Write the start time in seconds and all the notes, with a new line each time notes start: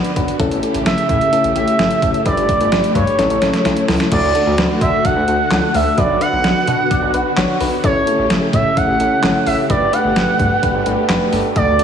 Already playing: D3 B3 D4 F#4 B4
0.04 closed hi-hat
0.16 B1 D4 F#4 B4, kick, closed hi-hat
0.28 closed hi-hat
0.40 A1 C#3 A3 C#4 E4 G4 A4, kick, closed hi-hat
0.51 A1, closed hi-hat
0.63 C#4 E4 A4, closed hi-hat
0.74 A1, closed hi-hat
0.86 A1 C#4 E4 A4 E5, snare, closed hi-hat
0.98 closed hi-hat
1.09 A2 C#4 E4 A4 E5, kick, closed hi-hat
1.21 closed hi-hat
1.33 C#4 E4 A4, closed hi-hat
1.44 A1, closed hi-hat
1.56 A1 C#4 E4 G4 E5, closed hi-hat
1.68 closed hi-hat
1.79 G1 C#4 E4 A4, snare, closed hi-hat
1.91 closed hi-hat
2.02 A1 C#4 E4 A4, kick, closed hi-hat
2.14 closed hi-hat
2.26 G1 B2 D4 G4 B4 D5, kick, closed hi-hat
2.37 G1, closed hi-hat
2.49 D4 G4 B4, kick, closed hi-hat
2.61 G1, closed hi-hat
2.72 G1 D4 G4 B4, snare, closed hi-hat
2.84 closed hi-hat
2.95 G2 D4 G4 B4 C#5, kick, closed hi-hat
3.07 closed hi-hat
3.19 A1 C#3 C#4 E4 A4, snare, closed hi-hat
3.30 A1, closed hi-hat
3.42 A1 C#4 E4 A4, snare, closed hi-hat
3.54 snare, closed hi-hat
3.65 B1 C#4 E4 A4, snare, closed hi-hat
3.77 closed hi-hat
3.88 C#2 C#4 E4 A4, snare, open hi-hat
4.00 snare, closed hi-hat
4.12 D2 D3 A3 D4 F#4 A4 D5, kick, closed hi-hat, crash
4.23 D2
4.35 D4 F#4 A4, closed hi-hat
4.47 D2
4.58 D2 D4 F#4 B4, snare, closed hi-hat
4.81 D3 D4 F#4 A4 E5, kick, closed hi-hat
5.05 D4 F#4 A4 F#5, kick, closed hi-hat
5.16 D2
5.28 D2 D4 F#4 A4, closed hi-hat
5.51 C#2 D4 F#4 A4, snare, clap, closed hi-hat
5.74 D2 D4 F#4 A4 E5, open hi-hat
5.98 B1 B3 D4 F#4 B4 D5, kick, closed hi-hat
6.09 B1
6.21 D4 F#4 B4 F#5, closed hi-hat
6.33 B1
6.44 B1 D4 F#4 B4, snare, closed hi-hat
6.67 B2 D4 F#4 B4, closed hi-hat
6.91 D4 F#4 D5, kick, closed hi-hat
7.02 B1
7.14 B1 D4 F#4 B4, closed hi-hat
7.37 A1 D4 F#4 C#5, snare, clap, closed hi-hat
7.61 B1 D4 F#4 B4, open hi-hat
7.84 A1 C#3 A3 C#4 E4 G4 A4 C#5, kick, closed hi-hat
7.95 A1
8.07 C#4 E4 A4, closed hi-hat
8.19 A1
8.30 A1 C#4 E4 A4, snare, closed hi-hat
8.53 A2 C#4 E4 A4 E5, kick, closed hi-hat
8.77 C#4 E4 A4 F#5, kick, closed hi-hat
8.88 A1
9.00 A1 C#4 E4 A4, closed hi-hat
9.23 G1 C#4 E4 A4, snare, clap, closed hi-hat
9.46 A1 C#4 E4 A4 E5, open hi-hat
9.70 G1 B2 D4 G4 B4 D5, kick, closed hi-hat
9.81 G1
9.93 D4 G4 B4 F#5, closed hi-hat
10.05 G1
10.16 G1 D4 G4 B4, snare, closed hi-hat
10.39 G2 D4 G4 B4, kick, closed hi-hat
10.63 D4 G4 B4, kick, closed hi-hat
10.74 G1
10.86 G1 D4 G4 B4, closed hi-hat
11.09 F#1 D4 G4 B4, snare, clap, closed hi-hat
11.33 G1 D4 G4 A4, open hi-hat
11.56 D2 D3 D4 F#4 A4 D5, kick, closed hi-hat
11.68 D2
11.79 D4 F#4 A4, closed hi-hat